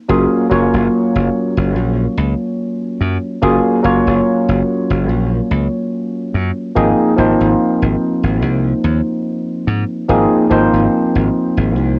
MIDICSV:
0, 0, Header, 1, 3, 480
1, 0, Start_track
1, 0, Tempo, 833333
1, 52, Time_signature, 4, 2, 24, 8
1, 6906, End_track
2, 0, Start_track
2, 0, Title_t, "Tine electric piano"
2, 0, Program_c, 0, 4
2, 49, Note_on_c, 0, 54, 86
2, 51, Note_on_c, 0, 58, 82
2, 53, Note_on_c, 0, 61, 85
2, 56, Note_on_c, 0, 65, 79
2, 58, Note_on_c, 0, 68, 101
2, 264, Note_off_c, 0, 54, 0
2, 266, Note_off_c, 0, 58, 0
2, 267, Note_off_c, 0, 61, 0
2, 268, Note_off_c, 0, 65, 0
2, 269, Note_off_c, 0, 68, 0
2, 284, Note_on_c, 0, 54, 83
2, 289, Note_on_c, 0, 58, 78
2, 293, Note_on_c, 0, 61, 76
2, 297, Note_on_c, 0, 65, 74
2, 302, Note_on_c, 0, 73, 92
2, 1942, Note_off_c, 0, 54, 0
2, 1944, Note_off_c, 0, 58, 0
2, 1946, Note_off_c, 0, 61, 0
2, 1949, Note_off_c, 0, 65, 0
2, 1951, Note_off_c, 0, 73, 0
2, 1968, Note_on_c, 0, 54, 91
2, 1971, Note_on_c, 0, 58, 85
2, 1973, Note_on_c, 0, 61, 79
2, 1975, Note_on_c, 0, 65, 83
2, 1977, Note_on_c, 0, 68, 104
2, 2184, Note_off_c, 0, 54, 0
2, 2185, Note_off_c, 0, 58, 0
2, 2186, Note_off_c, 0, 61, 0
2, 2188, Note_off_c, 0, 65, 0
2, 2189, Note_off_c, 0, 68, 0
2, 2204, Note_on_c, 0, 54, 83
2, 2208, Note_on_c, 0, 58, 76
2, 2212, Note_on_c, 0, 61, 78
2, 2216, Note_on_c, 0, 65, 77
2, 2221, Note_on_c, 0, 73, 99
2, 3862, Note_off_c, 0, 54, 0
2, 3864, Note_off_c, 0, 58, 0
2, 3866, Note_off_c, 0, 61, 0
2, 3868, Note_off_c, 0, 65, 0
2, 3870, Note_off_c, 0, 73, 0
2, 3888, Note_on_c, 0, 53, 85
2, 3890, Note_on_c, 0, 58, 81
2, 3892, Note_on_c, 0, 60, 82
2, 3894, Note_on_c, 0, 63, 84
2, 3897, Note_on_c, 0, 68, 101
2, 4104, Note_off_c, 0, 53, 0
2, 4105, Note_off_c, 0, 58, 0
2, 4106, Note_off_c, 0, 60, 0
2, 4107, Note_off_c, 0, 63, 0
2, 4108, Note_off_c, 0, 68, 0
2, 4125, Note_on_c, 0, 53, 84
2, 4130, Note_on_c, 0, 58, 78
2, 4134, Note_on_c, 0, 60, 76
2, 4138, Note_on_c, 0, 63, 77
2, 4143, Note_on_c, 0, 72, 92
2, 5783, Note_off_c, 0, 53, 0
2, 5785, Note_off_c, 0, 58, 0
2, 5787, Note_off_c, 0, 60, 0
2, 5789, Note_off_c, 0, 63, 0
2, 5791, Note_off_c, 0, 72, 0
2, 5808, Note_on_c, 0, 53, 88
2, 5811, Note_on_c, 0, 58, 86
2, 5812, Note_on_c, 0, 60, 78
2, 5814, Note_on_c, 0, 63, 82
2, 5817, Note_on_c, 0, 68, 100
2, 6024, Note_off_c, 0, 53, 0
2, 6025, Note_off_c, 0, 58, 0
2, 6026, Note_off_c, 0, 60, 0
2, 6027, Note_off_c, 0, 63, 0
2, 6028, Note_off_c, 0, 68, 0
2, 6044, Note_on_c, 0, 53, 83
2, 6048, Note_on_c, 0, 58, 76
2, 6053, Note_on_c, 0, 60, 77
2, 6057, Note_on_c, 0, 63, 77
2, 6061, Note_on_c, 0, 72, 93
2, 6906, Note_off_c, 0, 53, 0
2, 6906, Note_off_c, 0, 58, 0
2, 6906, Note_off_c, 0, 60, 0
2, 6906, Note_off_c, 0, 63, 0
2, 6906, Note_off_c, 0, 72, 0
2, 6906, End_track
3, 0, Start_track
3, 0, Title_t, "Slap bass"
3, 0, Program_c, 1, 36
3, 52, Note_on_c, 1, 30, 98
3, 145, Note_off_c, 1, 30, 0
3, 293, Note_on_c, 1, 30, 85
3, 385, Note_off_c, 1, 30, 0
3, 424, Note_on_c, 1, 30, 88
3, 500, Note_off_c, 1, 30, 0
3, 664, Note_on_c, 1, 30, 82
3, 740, Note_off_c, 1, 30, 0
3, 904, Note_on_c, 1, 30, 85
3, 1011, Note_off_c, 1, 30, 0
3, 1011, Note_on_c, 1, 34, 89
3, 1187, Note_off_c, 1, 34, 0
3, 1253, Note_on_c, 1, 37, 97
3, 1345, Note_off_c, 1, 37, 0
3, 1733, Note_on_c, 1, 42, 87
3, 1825, Note_off_c, 1, 42, 0
3, 1973, Note_on_c, 1, 30, 103
3, 2065, Note_off_c, 1, 30, 0
3, 2213, Note_on_c, 1, 30, 85
3, 2305, Note_off_c, 1, 30, 0
3, 2344, Note_on_c, 1, 30, 88
3, 2420, Note_off_c, 1, 30, 0
3, 2584, Note_on_c, 1, 30, 84
3, 2660, Note_off_c, 1, 30, 0
3, 2824, Note_on_c, 1, 30, 82
3, 2932, Note_off_c, 1, 30, 0
3, 2932, Note_on_c, 1, 34, 90
3, 3107, Note_off_c, 1, 34, 0
3, 3173, Note_on_c, 1, 37, 93
3, 3265, Note_off_c, 1, 37, 0
3, 3653, Note_on_c, 1, 42, 90
3, 3745, Note_off_c, 1, 42, 0
3, 3893, Note_on_c, 1, 32, 94
3, 3985, Note_off_c, 1, 32, 0
3, 4133, Note_on_c, 1, 32, 86
3, 4225, Note_off_c, 1, 32, 0
3, 4264, Note_on_c, 1, 32, 88
3, 4340, Note_off_c, 1, 32, 0
3, 4505, Note_on_c, 1, 32, 83
3, 4580, Note_off_c, 1, 32, 0
3, 4744, Note_on_c, 1, 32, 81
3, 4852, Note_off_c, 1, 32, 0
3, 4852, Note_on_c, 1, 36, 92
3, 5027, Note_off_c, 1, 36, 0
3, 5092, Note_on_c, 1, 39, 92
3, 5184, Note_off_c, 1, 39, 0
3, 5572, Note_on_c, 1, 44, 91
3, 5664, Note_off_c, 1, 44, 0
3, 5812, Note_on_c, 1, 32, 95
3, 5904, Note_off_c, 1, 32, 0
3, 6051, Note_on_c, 1, 32, 88
3, 6144, Note_off_c, 1, 32, 0
3, 6183, Note_on_c, 1, 32, 84
3, 6259, Note_off_c, 1, 32, 0
3, 6423, Note_on_c, 1, 32, 83
3, 6499, Note_off_c, 1, 32, 0
3, 6664, Note_on_c, 1, 32, 80
3, 6772, Note_off_c, 1, 32, 0
3, 6772, Note_on_c, 1, 36, 93
3, 6906, Note_off_c, 1, 36, 0
3, 6906, End_track
0, 0, End_of_file